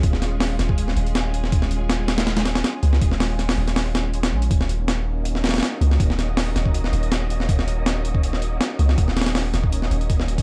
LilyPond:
<<
  \new Staff \with { instrumentName = "Synth texture" } { \time 4/4 \key ees \minor \tempo 4 = 161 r1 | r1 | r1 | <ees'' ees'''>1~ |
<ees'' ees'''>1~ | <ees'' ees'''>1~ | <ees'' ees'''>1 | }
  \new Staff \with { instrumentName = "String machine" } { \time 4/4 \key ees \minor <aes des' f' aes'>1~ | <aes des' f' aes'>1~ | <aes des' f' aes'>1 | <bes des' ees' ges'>1~ |
<bes des' ees' ges'>1~ | <bes des' ees' ges'>1~ | <bes des' ees' ges'>1 | }
  \new Staff \with { instrumentName = "808-style bass" } { \clef bass \time 4/4 \key ees \minor ees,,4. ees,,4 ees,,4. | ees,,2. r8 des,8 | ees,,4. ees,,2 bes,,8 | ees,,2. r8 des,8 |
ees,,4. ees,,4 ees,,4. | ees,,2. r8 des,8 | ees,,4. ees,,4 ees,,4. | }
  \new DrumStaff \with { instrumentName = "Drums" } \drummode { \time 4/4 <hh bd>16 sn16 <hh sn>8 <hho sn>8 <hh sn>16 bd16 hh16 sn16 hh16 hh16 <hh sn>8 hh16 sn16 | <hh bd>16 sn16 hh8 <hh sn>8 <hh sn>16 <hh sn>16 <hh sn>16 <hh sn>16 <hh sn>16 <hh sn>16 <hh sn>8 hh16 sn16 | <hh bd>16 sn16 <hho sn>8 <hh sn>16 <hho sn>8 <hh sn>16 <hho sn>8 <hh sn>8 hh16 <hh sn>8 hh16 | <hh bd>16 sn16 hh8 <hh sn>4 hh16 sn16 <hh sn>32 <hh sn>32 <hh sn>32 <hh sn>32 <hh sn>8 hh16 sn16 |
<hh bd>16 sn16 <hh sn>8 <hho sn>8 <hh sn>16 bd16 hh16 sn16 hh16 hh16 <hh sn>8 hh16 sn16 | <hh bd>16 sn16 hh8 <hh sn>8 hh16 bd16 hh16 sn16 hh8 <hh sn>8 hh16 sn16 | <hh bd>16 sn16 <hh sn>32 <hh sn>32 <hh sn>16 <hho sn>8 <hh sn>16 bd16 hh16 sn16 hh16 hh16 <hh bd>16 sn16 hh16 <hh bd>16 | }
>>